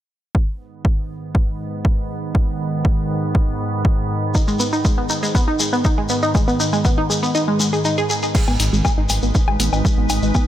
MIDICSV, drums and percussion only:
0, 0, Header, 1, 3, 480
1, 0, Start_track
1, 0, Key_signature, 5, "minor"
1, 0, Tempo, 500000
1, 334, Time_signature, 4, 2, 24, 8
1, 10051, End_track
2, 0, Start_track
2, 0, Title_t, "Shekere"
2, 4174, Note_on_c, 9, 82, 58
2, 4270, Note_off_c, 9, 82, 0
2, 4299, Note_on_c, 9, 82, 41
2, 4395, Note_off_c, 9, 82, 0
2, 4411, Note_on_c, 9, 82, 90
2, 4507, Note_off_c, 9, 82, 0
2, 4538, Note_on_c, 9, 82, 41
2, 4634, Note_off_c, 9, 82, 0
2, 4653, Note_on_c, 9, 82, 60
2, 4749, Note_off_c, 9, 82, 0
2, 4891, Note_on_c, 9, 82, 103
2, 4987, Note_off_c, 9, 82, 0
2, 5024, Note_on_c, 9, 82, 44
2, 5120, Note_off_c, 9, 82, 0
2, 5140, Note_on_c, 9, 82, 52
2, 5236, Note_off_c, 9, 82, 0
2, 5370, Note_on_c, 9, 82, 87
2, 5466, Note_off_c, 9, 82, 0
2, 5502, Note_on_c, 9, 82, 36
2, 5598, Note_off_c, 9, 82, 0
2, 5612, Note_on_c, 9, 82, 53
2, 5708, Note_off_c, 9, 82, 0
2, 5847, Note_on_c, 9, 82, 99
2, 5943, Note_off_c, 9, 82, 0
2, 5978, Note_on_c, 9, 82, 40
2, 6074, Note_off_c, 9, 82, 0
2, 6095, Note_on_c, 9, 82, 56
2, 6191, Note_off_c, 9, 82, 0
2, 6223, Note_on_c, 9, 82, 36
2, 6319, Note_off_c, 9, 82, 0
2, 6337, Note_on_c, 9, 82, 90
2, 6433, Note_off_c, 9, 82, 0
2, 6457, Note_on_c, 9, 82, 38
2, 6553, Note_off_c, 9, 82, 0
2, 6575, Note_on_c, 9, 82, 52
2, 6671, Note_off_c, 9, 82, 0
2, 6821, Note_on_c, 9, 82, 87
2, 6917, Note_off_c, 9, 82, 0
2, 6946, Note_on_c, 9, 82, 40
2, 7042, Note_off_c, 9, 82, 0
2, 7054, Note_on_c, 9, 82, 52
2, 7150, Note_off_c, 9, 82, 0
2, 7297, Note_on_c, 9, 82, 100
2, 7393, Note_off_c, 9, 82, 0
2, 7423, Note_on_c, 9, 82, 35
2, 7519, Note_off_c, 9, 82, 0
2, 7533, Note_on_c, 9, 82, 56
2, 7629, Note_off_c, 9, 82, 0
2, 7660, Note_on_c, 9, 82, 35
2, 7756, Note_off_c, 9, 82, 0
2, 7774, Note_on_c, 9, 82, 90
2, 7870, Note_off_c, 9, 82, 0
2, 7898, Note_on_c, 9, 82, 42
2, 7994, Note_off_c, 9, 82, 0
2, 8020, Note_on_c, 9, 82, 47
2, 8116, Note_off_c, 9, 82, 0
2, 8138, Note_on_c, 9, 82, 35
2, 8234, Note_off_c, 9, 82, 0
2, 8256, Note_on_c, 9, 82, 83
2, 8352, Note_off_c, 9, 82, 0
2, 8384, Note_on_c, 9, 82, 37
2, 8480, Note_off_c, 9, 82, 0
2, 8498, Note_on_c, 9, 82, 52
2, 8594, Note_off_c, 9, 82, 0
2, 8728, Note_on_c, 9, 82, 83
2, 8824, Note_off_c, 9, 82, 0
2, 8855, Note_on_c, 9, 82, 35
2, 8951, Note_off_c, 9, 82, 0
2, 8974, Note_on_c, 9, 82, 48
2, 9070, Note_off_c, 9, 82, 0
2, 9219, Note_on_c, 9, 82, 88
2, 9315, Note_off_c, 9, 82, 0
2, 9341, Note_on_c, 9, 82, 41
2, 9437, Note_off_c, 9, 82, 0
2, 9462, Note_on_c, 9, 82, 54
2, 9558, Note_off_c, 9, 82, 0
2, 9691, Note_on_c, 9, 82, 92
2, 9787, Note_off_c, 9, 82, 0
2, 9816, Note_on_c, 9, 82, 39
2, 9912, Note_off_c, 9, 82, 0
2, 9932, Note_on_c, 9, 82, 53
2, 10028, Note_off_c, 9, 82, 0
2, 10051, End_track
3, 0, Start_track
3, 0, Title_t, "Drums"
3, 334, Note_on_c, 9, 36, 104
3, 430, Note_off_c, 9, 36, 0
3, 814, Note_on_c, 9, 36, 111
3, 910, Note_off_c, 9, 36, 0
3, 1294, Note_on_c, 9, 36, 115
3, 1390, Note_off_c, 9, 36, 0
3, 1774, Note_on_c, 9, 36, 111
3, 1870, Note_off_c, 9, 36, 0
3, 2254, Note_on_c, 9, 36, 112
3, 2350, Note_off_c, 9, 36, 0
3, 2734, Note_on_c, 9, 36, 115
3, 2830, Note_off_c, 9, 36, 0
3, 3214, Note_on_c, 9, 36, 111
3, 3310, Note_off_c, 9, 36, 0
3, 3694, Note_on_c, 9, 36, 124
3, 3790, Note_off_c, 9, 36, 0
3, 4174, Note_on_c, 9, 36, 116
3, 4270, Note_off_c, 9, 36, 0
3, 4654, Note_on_c, 9, 36, 121
3, 4750, Note_off_c, 9, 36, 0
3, 5134, Note_on_c, 9, 36, 124
3, 5230, Note_off_c, 9, 36, 0
3, 5614, Note_on_c, 9, 36, 125
3, 5710, Note_off_c, 9, 36, 0
3, 6094, Note_on_c, 9, 36, 114
3, 6190, Note_off_c, 9, 36, 0
3, 6574, Note_on_c, 9, 36, 122
3, 6670, Note_off_c, 9, 36, 0
3, 8014, Note_on_c, 9, 36, 115
3, 8014, Note_on_c, 9, 49, 92
3, 8110, Note_off_c, 9, 36, 0
3, 8110, Note_off_c, 9, 49, 0
3, 8139, Note_on_c, 9, 77, 49
3, 8235, Note_off_c, 9, 77, 0
3, 8254, Note_on_c, 9, 46, 97
3, 8350, Note_off_c, 9, 46, 0
3, 8493, Note_on_c, 9, 77, 75
3, 8494, Note_on_c, 9, 36, 111
3, 8589, Note_off_c, 9, 77, 0
3, 8590, Note_off_c, 9, 36, 0
3, 8734, Note_on_c, 9, 46, 103
3, 8734, Note_on_c, 9, 77, 49
3, 8830, Note_off_c, 9, 46, 0
3, 8830, Note_off_c, 9, 77, 0
3, 8974, Note_on_c, 9, 36, 117
3, 9070, Note_off_c, 9, 36, 0
3, 9099, Note_on_c, 9, 77, 73
3, 9195, Note_off_c, 9, 77, 0
3, 9214, Note_on_c, 9, 46, 103
3, 9310, Note_off_c, 9, 46, 0
3, 9339, Note_on_c, 9, 77, 48
3, 9435, Note_off_c, 9, 77, 0
3, 9454, Note_on_c, 9, 36, 117
3, 9550, Note_off_c, 9, 36, 0
3, 9694, Note_on_c, 9, 46, 102
3, 9694, Note_on_c, 9, 77, 72
3, 9790, Note_off_c, 9, 46, 0
3, 9790, Note_off_c, 9, 77, 0
3, 9934, Note_on_c, 9, 36, 114
3, 9934, Note_on_c, 9, 77, 50
3, 10030, Note_off_c, 9, 36, 0
3, 10030, Note_off_c, 9, 77, 0
3, 10051, End_track
0, 0, End_of_file